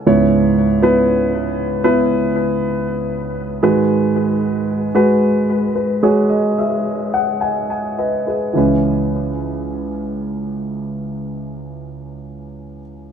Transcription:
<<
  \new Staff \with { instrumentName = "Grand piano" } { \time 4/4 \key cis \minor \tempo 4 = 55 << { r1 | r4. b'16 cis''16 dis''16 e''8 fis''16 <dis'' fis'' gis''>16 gis''16 <b' dis''>16 <gis' b'>16~ | <gis' b'>16 r2. r8. | } \\ { <b e' cis''>8. <b e' b'>4 <b e' b'>4.~ <b e' b'>16 <gis fis' b'>8~ | <gis fis' b'>8. <gis fis' b'>4 <gis fis' gis'>2 r16 | <e cis' b'>1 | } >> }
  \new Staff \with { instrumentName = "Grand piano" } { \clef bass \time 4/4 \key cis \minor <cis, gis,>2.~ <cis, gis,>8 <gis, dis>8~ | <gis, dis>2.~ <gis, dis>8 r8 | cis,1 | }
>>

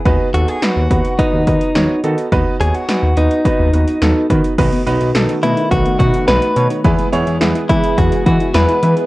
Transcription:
<<
  \new Staff \with { instrumentName = "Clean electric guitar" } { \time 4/4 \key b \mixolydian \tempo 4 = 106 r8 fis'16 gis'16 fis'4 dis'4. r8 | r8 gis'16 fis'8. dis'2 r8 | r4. e'8 fis'8 fis'8 b'8. r16 | r4. e'8 fis'8 fis'8 b'8. r16 | }
  \new Staff \with { instrumentName = "Grand piano" } { \time 4/4 \key b \mixolydian <b dis' fis' b'>8 <b dis' fis' a'>8 <b dis' fis' b'>8 <b dis' fis' b'>8 <b dis' fis' b'>8 <b dis' fis' b'>8 <b dis' fis' cis''>8 <b dis' fis' a'>8 | <b dis' fis' b'>8 <b dis' fis' cis''>8 <b dis' fis' b'>8 <b dis' fis' b'>8 <b dis' fis' b'>8 <b dis' fis' b'>8 <b dis' fis' a'>8 <b dis' fis' b'>8 | <b dis' fis' b'>8 <b dis' fis' b'>8 <b dis' fis' a'>8 <b dis' fis' b'>8 <b dis' fis' b'>8 <b dis' fis' b'>8 <b dis' fis' b'>8 <b dis' fis' cis''>8 | <b e' gis' b'>8 <b e' gis' cis''>8 <b e' gis' b'>8 <b e' gis' b'>8 <b e' gis' b'>8 <b e' gis' b'>8 <b e' gis' b'>8 <b e' gis' b'>8 | }
  \new Staff \with { instrumentName = "Synth arpeggio sound" } { \time 4/4 \key b \mixolydian r1 | r1 | dis16 b16 dis'16 dis'16 dis'16 dis'16 a16 dis'16 dis16 b16 dis'16 dis'16 dis'16 dis'16 r16 dis'16 | e16 b16 e'16 e'16 e'16 e'16 gis16 e'16 e16 b16 e'16 e'16 e'16 e'16 r16 e'16 | }
  \new Staff \with { instrumentName = "Analog synth pad" } { \time 4/4 \key b \mixolydian << { r1 | r1 | <dis a fis'>1 | <e gis gis'>1 | } \\ { r1 | r1 | b1~ | b1 | } >> }
  \new Staff \with { instrumentName = "Analog synth bass" } { \clef bass \time 4/4 \key b \mixolydian dis,16 r16 dis,16 r8 dis,16 dis,16 r8 dis,16 dis,16 r16 dis,16 r16 dis16 r16 | dis,16 r16 dis,16 r8 dis,16 dis,16 r8 dis,16 dis,16 r16 dis,16 r16 dis16 r16 | b,,16 r16 b,,16 b,,16 b,,16 r16 b,16 r16 b,,16 r16 b,16 r16 b,,16 r16 b,16 r16 | e,16 r16 e,16 e,16 e,16 r16 e16 r16 e,16 r16 e16 r16 e,16 r16 e16 r16 | }
  \new DrumStaff \with { instrumentName = "Drums" } \drummode { \time 4/4 <hh bd>8 hh16 hh16 <hh sn>8 <hh bd>16 hh16 <hh bd>8 <hh bd>16 hh16 <hh sn>8 hh16 hh16 | <hh bd>8 hh16 hh16 <hh sn>8 hh16 hh16 <hh bd>8 hh16 hh16 <hh sn>8 <hh bd>16 hh16 | <cymc hh bd>16 hh16 hh16 hh16 <hh sn>16 hh16 hh16 hh16 <hh bd>16 hh16 <hh bd>16 hh16 <hh sn>16 hh16 hh16 hh16 | <hh bd>16 hh16 hh16 hh16 <hh sn>16 hh16 <hh bd>16 hh16 <hh bd>16 hh16 <hh bd>16 hh16 <hh sn>16 hh16 hh16 hh16 | }
>>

